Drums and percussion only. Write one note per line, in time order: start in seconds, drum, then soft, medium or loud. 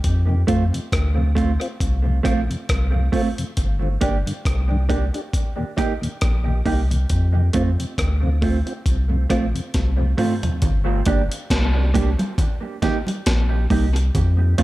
0.04 kick loud
0.04 closed hi-hat medium
0.48 kick medium
0.48 closed hi-hat medium
0.74 closed hi-hat medium
0.92 kick loud
0.92 cross-stick loud
0.92 closed hi-hat medium
1.37 kick medium
1.37 closed hi-hat medium
1.61 closed hi-hat soft
1.80 kick loud
1.80 closed hi-hat medium
2.25 kick medium
2.25 cross-stick medium
2.25 closed hi-hat medium
2.51 closed hi-hat soft
2.69 kick loud
2.69 cross-stick loud
2.69 closed hi-hat medium
3.13 kick medium
3.13 open hi-hat medium
3.38 closed hi-hat medium
3.57 kick medium
3.57 closed hi-hat medium
4.01 kick medium
4.01 closed hi-hat medium
4.27 closed hi-hat medium
4.45 kick loud
4.45 cross-stick loud
4.45 closed hi-hat medium
4.90 kick medium
4.90 closed hi-hat medium
5.14 closed hi-hat soft
5.33 kick loud
5.33 closed hi-hat medium
5.78 kick medium
5.78 cross-stick soft
5.78 closed hi-hat medium
6.03 closed hi-hat soft
6.21 kick loud
6.21 cross-stick loud
6.21 closed hi-hat medium
6.66 kick loud
6.66 open hi-hat medium
6.91 closed hi-hat medium
7.10 kick medium
7.10 closed hi-hat medium
7.53 kick medium
7.53 closed hi-hat medium
7.80 closed hi-hat medium
7.98 kick loud
7.98 cross-stick medium
7.98 closed hi-hat medium
8.42 kick medium
8.42 open hi-hat medium
8.67 closed hi-hat soft
8.86 kick loud
8.86 closed hi-hat medium
9.30 kick medium
9.30 cross-stick medium
9.30 closed hi-hat medium
9.56 closed hi-hat soft
9.74 kick loud
9.74 snare medium
9.74 closed hi-hat medium
10.18 mid tom medium
10.18 open hi-hat medium
10.43 closed hi-hat soft
10.43 floor tom medium
10.62 kick loud
10.62 closed hi-hat medium
10.62 low conga medium
11.06 kick loud
11.06 closed hi-hat medium
11.32 closed hi-hat medium
11.50 kick loud
11.50 snare loud
11.50 closed hi-hat medium
11.95 kick loud
11.95 closed hi-hat medium
11.95 high conga medium
12.19 closed hi-hat soft
12.19 high conga medium
12.38 kick loud
12.38 closed hi-hat medium
12.38 low conga medium
12.82 kick medium
12.82 snare medium
12.82 closed hi-hat medium
12.82 low conga medium
13.07 closed hi-hat soft
13.07 high conga medium
13.26 kick loud
13.26 snare loud
13.26 closed hi-hat medium
13.70 kick loud
13.70 open hi-hat medium
13.70 high conga medium
13.96 closed hi-hat medium
14.15 kick medium
14.15 closed hi-hat medium
14.15 low conga medium
14.58 kick medium
14.58 closed hi-hat medium